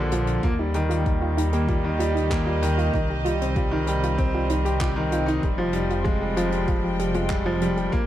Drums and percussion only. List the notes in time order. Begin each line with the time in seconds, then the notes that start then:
0.11 closed hi-hat
0.27 closed hi-hat
0.43 kick, closed hi-hat
0.74 closed hi-hat
0.90 closed hi-hat
1.06 kick, closed hi-hat
1.38 closed hi-hat
1.53 closed hi-hat
1.69 kick, closed hi-hat
2.00 closed hi-hat
2.17 closed hi-hat
2.31 kick, clap
2.62 closed hi-hat
2.78 closed hi-hat
2.94 kick, closed hi-hat
3.25 closed hi-hat
3.41 closed hi-hat
3.56 kick, closed hi-hat
3.87 closed hi-hat
4.03 closed hi-hat
4.18 kick, closed hi-hat
4.49 closed hi-hat
4.65 closed hi-hat
4.80 kick, clap, closed hi-hat
5.12 closed hi-hat
5.28 closed hi-hat
5.43 kick, closed hi-hat
5.73 closed hi-hat
5.90 closed hi-hat
6.05 kick, closed hi-hat
6.37 closed hi-hat
6.52 closed hi-hat
6.68 kick, closed hi-hat
6.99 closed hi-hat
7.14 closed hi-hat
7.30 kick, clap, closed hi-hat
7.61 closed hi-hat
7.77 closed hi-hat
7.93 kick, closed hi-hat